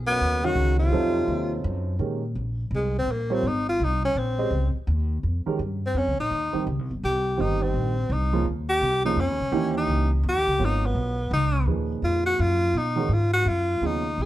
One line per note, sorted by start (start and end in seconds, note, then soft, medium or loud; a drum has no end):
0.00 0.19 B1 medium
0.07 0.43 F#2 medium
0.07 0.47 B3 loud
0.21 0.55 D#2 medium
0.42 0.78 C#3 medium
0.42 0.90 D#3 medium
0.42 0.90 G#3 medium
0.42 0.90 C#4 medium
0.42 0.90 F#4 medium
0.42 0.79 F#4 loud
0.42 0.91 A#4 medium
0.55 0.91 C#2 medium
0.78 1.59 C3 medium
0.78 1.60 F4 medium
0.92 1.27 F2 medium
0.92 1.92 F#3 medium
0.92 1.92 C4 medium
0.92 1.92 D#4 medium
0.92 1.92 F4 medium
0.92 1.92 A4 medium
1.27 1.63 D#2 medium
1.64 1.98 F#2 loud
1.99 2.34 A#2 medium
1.99 2.20 D#3 medium
1.99 2.20 G#3 medium
1.99 2.20 C#4 medium
1.99 2.20 G4 medium
1.99 2.21 A#4 medium
2.35 2.70 A#1 medium
2.71 3.05 C2 medium
2.76 2.95 G#3 medium
2.99 3.13 C4 medium
3.06 3.41 A#1 medium
3.11 3.35 A#3 medium
3.30 3.42 G3 medium
3.30 3.42 C4 medium
3.30 3.49 C4 medium
3.30 3.42 F4 medium
3.30 3.42 A#4 medium
3.30 3.42 C#5 medium
3.43 3.78 G#1 medium
3.47 3.68 D#4 medium
3.69 3.85 F4 medium
3.80 4.14 C2 medium
3.84 4.04 D#4 medium
4.05 4.20 C#4 medium
4.15 4.50 A#1 medium
4.15 4.75 C4 medium
4.38 4.50 G#3 medium
4.38 4.50 C#4 medium
4.38 4.50 G4 medium
4.38 4.50 C5 medium
4.38 4.50 D#5 medium
4.51 4.72 C#2 medium
4.75 muted upright bass stroke soft
4.87 5.22 D#2 medium
5.23 5.44 F2 medium
5.46 5.57 D#3 medium
5.46 5.57 G#3 medium
5.46 5.58 C#4 medium
5.46 5.58 G4 medium
5.46 5.58 A#4 medium
5.46 muted upright bass stroke soft
5.59 5.93 G2 medium
5.86 6.00 C4 medium
5.94 6.08 F2 medium
5.94 6.19 C#4 medium
6.07 6.18 C#2 medium
6.20 6.30 A#1 medium
6.20 6.64 D#4 medium
6.31 6.52 D#2 medium
6.53 6.65 D#3 medium
6.53 6.65 G3 medium
6.53 6.65 C4 medium
6.53 6.65 D#4 medium
6.53 6.65 G4 medium
6.53 muted upright bass stroke soft
6.67 6.79 C#2 medium
6.79 6.90 C2 medium
6.91 7.01 G1 medium
7.03 7.37 C2 medium
7.03 7.42 G4 medium
7.38 7.73 G1 medium
7.38 7.92 D#3 medium
7.38 7.92 G3 medium
7.38 7.92 C4 medium
7.38 7.92 D#4 medium
7.38 7.64 D#4 medium
7.38 7.92 G4 medium
7.62 8.14 C4 medium
7.74 8.08 A#1 medium
8.10 8.44 C2 loud
8.10 8.46 D#4 medium
8.33 8.44 C#3 medium
8.33 8.44 F3 medium
8.33 8.44 A#3 medium
8.33 8.44 C#4 medium
8.33 8.44 F4 medium
8.45 8.79 D#2 medium
8.69 9.02 G4 loud
8.81 9.16 C2 medium
9.05 9.16 C#3 medium
9.05 9.16 F3 medium
9.05 9.16 A#3 medium
9.05 9.16 C#4 medium
9.05 9.22 D#4 medium
9.05 9.16 F4 medium
9.16 9.29 F2 medium
9.20 9.77 C#4 medium
9.29 9.39 D#2 medium
9.40 9.51 C2 medium
9.52 9.87 D#2 medium
9.52 10.06 E3 medium
9.52 10.06 A#3 medium
9.52 10.06 C#4 medium
9.52 10.06 D#4 medium
9.52 10.06 G4 medium
9.78 10.10 D#4 medium
9.88 10.22 C#2 medium
10.23 10.35 E2 loud
10.29 10.66 G4 loud
10.35 10.46 D#2 medium
10.47 10.58 C#2 medium
10.58 10.94 G#1 medium
10.58 11.13 F#3 medium
10.58 11.13 B3 medium
10.58 11.13 F4 medium
10.58 11.14 A#4 soft
10.58 11.13 C#5 medium
10.65 10.88 D#4 medium
10.86 11.33 B3 medium
10.95 11.30 B1 medium
11.31 11.65 C#2 medium
11.31 11.66 D#4 medium
11.66 12.01 D#2 medium
11.66 12.67 A#2 medium
11.66 12.67 F3 medium
11.66 12.67 D#4 medium
11.66 12.67 G#4 medium
11.66 12.67 B4 medium
12.02 12.37 F2 medium
12.02 12.25 F4 medium
12.26 12.43 F#4 loud
12.39 12.73 F#2 loud
12.39 12.79 F4 medium
12.74 13.08 B2 medium
12.74 13.15 D#4 medium
12.96 13.08 D#3 medium
12.96 13.08 G#3 medium
12.96 13.09 C#4 medium
12.96 13.08 F#4 medium
12.96 13.09 A#4 medium
13.09 13.44 G#2 medium
13.13 13.33 F4 medium
13.33 13.50 F#4 loud
13.45 13.80 F#2 medium
13.45 13.88 F4 medium
13.81 14.16 D#2 medium
13.81 14.03 C#3 medium
13.81 14.03 F#3 medium
13.81 14.03 B3 medium
13.81 14.03 F4 medium
13.81 14.03 G#4 medium
13.86 14.24 D#4 medium
14.18 14.26 B1 medium
14.22 14.26 G#4 medium